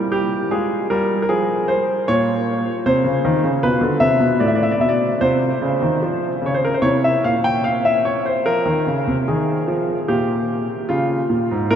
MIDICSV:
0, 0, Header, 1, 2, 480
1, 0, Start_track
1, 0, Key_signature, -4, "minor"
1, 0, Tempo, 778210
1, 1288, Time_signature, 4, 2, 24, 8
1, 2719, Tempo, 810811
1, 7068, End_track
2, 0, Start_track
2, 0, Title_t, "Grand piano"
2, 0, Program_c, 0, 0
2, 0, Note_on_c, 0, 55, 52
2, 0, Note_on_c, 0, 64, 33
2, 0, Note_on_c, 0, 70, 76
2, 72, Note_on_c, 0, 67, 69
2, 78, Note_off_c, 0, 70, 0
2, 183, Note_off_c, 0, 55, 0
2, 295, Note_off_c, 0, 64, 0
2, 315, Note_on_c, 0, 68, 66
2, 317, Note_on_c, 0, 56, 52
2, 317, Note_on_c, 0, 65, 34
2, 318, Note_off_c, 0, 67, 0
2, 492, Note_off_c, 0, 56, 0
2, 523, Note_off_c, 0, 68, 0
2, 556, Note_on_c, 0, 70, 64
2, 558, Note_on_c, 0, 55, 56
2, 728, Note_off_c, 0, 70, 0
2, 734, Note_off_c, 0, 55, 0
2, 754, Note_on_c, 0, 70, 61
2, 795, Note_on_c, 0, 68, 68
2, 797, Note_on_c, 0, 53, 50
2, 800, Note_off_c, 0, 70, 0
2, 1037, Note_on_c, 0, 72, 72
2, 1042, Note_off_c, 0, 68, 0
2, 1148, Note_off_c, 0, 53, 0
2, 1261, Note_off_c, 0, 65, 0
2, 1283, Note_off_c, 0, 72, 0
2, 1283, Note_on_c, 0, 73, 85
2, 1285, Note_on_c, 0, 46, 64
2, 1286, Note_on_c, 0, 65, 39
2, 1629, Note_off_c, 0, 46, 0
2, 1690, Note_off_c, 0, 73, 0
2, 1763, Note_on_c, 0, 48, 55
2, 1764, Note_on_c, 0, 72, 77
2, 1877, Note_off_c, 0, 48, 0
2, 1877, Note_on_c, 0, 49, 53
2, 1993, Note_off_c, 0, 49, 0
2, 2002, Note_on_c, 0, 51, 60
2, 2115, Note_off_c, 0, 51, 0
2, 2121, Note_on_c, 0, 49, 53
2, 2168, Note_off_c, 0, 72, 0
2, 2215, Note_off_c, 0, 65, 0
2, 2234, Note_off_c, 0, 49, 0
2, 2240, Note_on_c, 0, 65, 39
2, 2240, Note_on_c, 0, 71, 79
2, 2242, Note_on_c, 0, 47, 56
2, 2351, Note_on_c, 0, 50, 52
2, 2354, Note_off_c, 0, 47, 0
2, 2442, Note_off_c, 0, 71, 0
2, 2467, Note_on_c, 0, 76, 75
2, 2468, Note_off_c, 0, 50, 0
2, 2469, Note_on_c, 0, 48, 52
2, 2587, Note_off_c, 0, 48, 0
2, 2589, Note_on_c, 0, 47, 59
2, 2708, Note_off_c, 0, 47, 0
2, 2713, Note_off_c, 0, 76, 0
2, 2713, Note_on_c, 0, 74, 56
2, 2715, Note_on_c, 0, 45, 54
2, 2760, Note_on_c, 0, 76, 50
2, 2763, Note_off_c, 0, 74, 0
2, 2804, Note_on_c, 0, 74, 54
2, 2809, Note_off_c, 0, 76, 0
2, 2850, Note_on_c, 0, 76, 57
2, 2855, Note_off_c, 0, 74, 0
2, 2885, Note_off_c, 0, 45, 0
2, 2899, Note_on_c, 0, 74, 56
2, 2902, Note_off_c, 0, 76, 0
2, 2948, Note_on_c, 0, 47, 54
2, 2950, Note_off_c, 0, 74, 0
2, 2956, Note_on_c, 0, 76, 58
2, 3003, Note_off_c, 0, 76, 0
2, 3003, Note_on_c, 0, 74, 62
2, 3121, Note_off_c, 0, 47, 0
2, 3168, Note_off_c, 0, 65, 0
2, 3192, Note_off_c, 0, 74, 0
2, 3192, Note_on_c, 0, 65, 35
2, 3194, Note_on_c, 0, 72, 79
2, 3195, Note_on_c, 0, 48, 56
2, 3367, Note_off_c, 0, 48, 0
2, 3434, Note_on_c, 0, 49, 51
2, 3547, Note_off_c, 0, 49, 0
2, 3554, Note_on_c, 0, 51, 51
2, 3666, Note_off_c, 0, 51, 0
2, 3677, Note_on_c, 0, 53, 50
2, 3847, Note_off_c, 0, 53, 0
2, 3908, Note_on_c, 0, 49, 48
2, 3932, Note_off_c, 0, 72, 0
2, 3934, Note_on_c, 0, 73, 58
2, 3983, Note_on_c, 0, 72, 60
2, 3987, Note_off_c, 0, 73, 0
2, 4039, Note_off_c, 0, 72, 0
2, 4044, Note_on_c, 0, 70, 60
2, 4081, Note_off_c, 0, 49, 0
2, 4096, Note_off_c, 0, 70, 0
2, 4101, Note_on_c, 0, 72, 58
2, 4125, Note_off_c, 0, 65, 0
2, 4145, Note_on_c, 0, 48, 50
2, 4146, Note_on_c, 0, 73, 74
2, 4147, Note_on_c, 0, 64, 33
2, 4152, Note_off_c, 0, 72, 0
2, 4267, Note_off_c, 0, 73, 0
2, 4279, Note_on_c, 0, 76, 65
2, 4320, Note_off_c, 0, 48, 0
2, 4394, Note_off_c, 0, 76, 0
2, 4398, Note_on_c, 0, 77, 69
2, 4399, Note_on_c, 0, 46, 45
2, 4514, Note_off_c, 0, 77, 0
2, 4516, Note_on_c, 0, 79, 75
2, 4633, Note_off_c, 0, 79, 0
2, 4633, Note_on_c, 0, 77, 70
2, 4752, Note_off_c, 0, 77, 0
2, 4757, Note_on_c, 0, 76, 65
2, 4874, Note_off_c, 0, 76, 0
2, 4876, Note_on_c, 0, 73, 59
2, 4916, Note_off_c, 0, 46, 0
2, 4994, Note_off_c, 0, 73, 0
2, 4997, Note_on_c, 0, 72, 57
2, 5087, Note_off_c, 0, 64, 0
2, 5115, Note_off_c, 0, 72, 0
2, 5115, Note_on_c, 0, 65, 32
2, 5116, Note_on_c, 0, 70, 74
2, 5118, Note_on_c, 0, 53, 50
2, 5230, Note_off_c, 0, 53, 0
2, 5233, Note_on_c, 0, 51, 47
2, 5348, Note_off_c, 0, 51, 0
2, 5360, Note_on_c, 0, 49, 48
2, 5472, Note_off_c, 0, 49, 0
2, 5481, Note_on_c, 0, 48, 48
2, 5524, Note_off_c, 0, 70, 0
2, 5592, Note_off_c, 0, 48, 0
2, 5603, Note_on_c, 0, 51, 47
2, 5603, Note_on_c, 0, 68, 53
2, 5773, Note_off_c, 0, 51, 0
2, 5839, Note_on_c, 0, 53, 48
2, 6010, Note_off_c, 0, 53, 0
2, 6053, Note_off_c, 0, 65, 0
2, 6078, Note_on_c, 0, 65, 35
2, 6079, Note_off_c, 0, 68, 0
2, 6079, Note_on_c, 0, 67, 66
2, 6080, Note_on_c, 0, 46, 48
2, 6422, Note_off_c, 0, 46, 0
2, 6546, Note_off_c, 0, 65, 0
2, 6554, Note_off_c, 0, 67, 0
2, 6555, Note_on_c, 0, 65, 68
2, 6559, Note_on_c, 0, 49, 50
2, 6732, Note_off_c, 0, 49, 0
2, 6797, Note_on_c, 0, 46, 51
2, 6913, Note_off_c, 0, 46, 0
2, 6924, Note_on_c, 0, 44, 51
2, 6969, Note_off_c, 0, 65, 0
2, 7038, Note_off_c, 0, 44, 0
2, 7039, Note_on_c, 0, 46, 61
2, 7039, Note_on_c, 0, 70, 82
2, 7041, Note_on_c, 0, 64, 38
2, 7068, Note_off_c, 0, 46, 0
2, 7068, Note_off_c, 0, 64, 0
2, 7068, Note_off_c, 0, 70, 0
2, 7068, End_track
0, 0, End_of_file